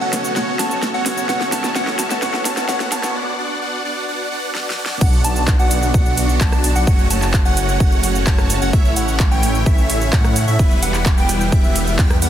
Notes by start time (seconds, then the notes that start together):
Already playing: C#3 F#3 A3 C#4 F#4 A4 F#5, riser
0.01 B3 C#4 F#4 C#5 F#5
0.12 B2 B3 C#4 F#4 C#5, snare, open hi-hat, cabasa
0.24 cabasa
0.35 B2 B3 C#4 F#4 C#5 F#5, snare, cabasa
0.59 B3 C#4 F#4 C#5 A5, snare, open hi-hat, cabasa
0.70 B2 B3 C#4 F#4 F#5, cabasa
0.83 snare, cabasa
0.94 B3 C#4 F#4 C#5 F#5
1.05 B2 B3 C#4 F#4 C#5, snare, open hi-hat, cabasa
1.17 cabasa
1.28 B2 E3 B3 C#4 E4 F#4 A4 C#5 F#5, snare, cabasa
1.41 snare
1.52 B3 C#4 F#4 C#5 A5, snare, open hi-hat, cabasa
1.63 B2 B3 C#4 F#4 F#5, snare, cabasa
1.75 B2 B3 C#4 F#4 C#5 F#5, snare, cabasa
1.87 snare
1.99 B3 C#4 F#4 C#5 A5, snare, open hi-hat, cabasa
2.10 B2 B3 C#4 F#4 F#5, snare, cabasa
2.21 B2 B3 C#4 F#4 C#5 F#5, snare, cabasa
2.34 snare
2.45 B3 C#4 F#4 C#5 A5, snare, open hi-hat, cabasa
2.56 B2 B3 C#4 F#4 F#5, snare, cabasa
2.68 B2 B3 C#4 F#4 C#5 F#5, snare, cabasa
2.80 snare
2.92 B3 C#4 F#4 C#5 A5, snare, open hi-hat, cabasa
3.03 B2 B3 C#4 F#4 F#5, snare, cabasa
3.15 B3 D4 F#4 D5 F#5
3.38 B3 D4 F#4 D5 F#5
3.62 B3 D4 F#4 D5 F#5
3.85 B3 D4 F#4 D5 F#5
4.08 B3 D4 F#4 D5 F#5
4.31 B3 D4 F#4 D5 F#5
4.55 B3 D4 F#4 D5 F#5, snare
4.70 snare
4.78 B3 D4 F#4 D5 F#5
4.86 snare
5.01 B1 B2 D3 F#3 B3 D4 F#4 D5 F#5, kick, crash, cabasa
5.13 cabasa
5.24 B1 B3 D4 F#4 D5 A5, open hi-hat, cabasa
5.36 cabasa
5.48 kick, clap, cabasa
5.59 B1 B3 D4 F#4 D5 F#5, cabasa
5.71 open hi-hat, cabasa
5.83 cabasa
5.94 B1 B3 D4 F#4 D5 F#5, kick, cabasa
6.06 cabasa
6.17 open hi-hat, cabasa
6.29 cabasa
6.41 B1 B3 F#4 A5, kick, clap, cabasa
6.52 cross-stick, cabasa
6.64 open hi-hat, cabasa
6.76 B1 B3 D4 F#4 D5 F#5, cabasa
6.87 F#1 A2 C#3 A3 C#4 F#4 C#5 F#5, kick, cabasa
6.99 cabasa
7.10 F#1 A3 C#4 F#4 C#5 A5, open hi-hat, cabasa
7.22 clap, cabasa
7.34 kick, clap, cabasa
7.45 F#1 A3 C#4 F#4 C#5 F#5, cabasa
7.57 open hi-hat, cabasa
7.69 cabasa
7.80 F#1 A3 C#4 F#4 C#5 F#5, kick, cabasa
7.92 cabasa
8.04 open hi-hat, cabasa
8.15 cabasa
8.27 F#1 A3 C#4 F#4 C#5 A5, kick, clap, cabasa
8.38 cross-stick, cabasa
8.50 open hi-hat, cabasa
8.62 F#1 A3 C#4 F#4 C#5 F#5, cabasa
8.73 A1 E3 A3 C#4 E4 C#5 E5, kick, cabasa
8.85 cabasa
8.96 A1 A3 C#4 E4 C#5 F#5, open hi-hat, cabasa
9.08 cabasa
9.20 kick, clap, cabasa
9.31 A1 A3 C#4 E4 C#5 G5, cabasa
9.43 open hi-hat, cabasa
9.55 cabasa
9.66 A1 C#4 E4 E5, kick, cabasa
9.78 cabasa
9.90 open hi-hat, cabasa
10.01 cabasa
10.13 A2 A3 F#5, kick, clap, cabasa
10.24 cross-stick, cabasa
10.36 open hi-hat, cabasa
10.48 A2 A3 C#4 E4 C#5 E5, cabasa
10.59 E1 B2 E3 G3 B3 E4 G4 B4 E5, kick, cabasa
10.71 cabasa
10.83 E1 G3 B3 E4 B4 F#5, open hi-hat, cabasa
10.94 clap, cabasa
11.06 kick, clap, cabasa
11.17 E1 G3 B3 E4 B4 G5, cabasa
11.29 open hi-hat, cabasa
11.41 cabasa
11.52 E1 G3 B3 E4 E5, kick, cabasa
11.64 cabasa
11.76 open hi-hat, cabasa
11.87 cabasa
11.99 E2 G3 B3 E4 B4 G5, kick, clap, cabasa
12.10 cross-stick, cabasa
12.22 E2 G3 B3 E4 B4 F#5, open hi-hat, cabasa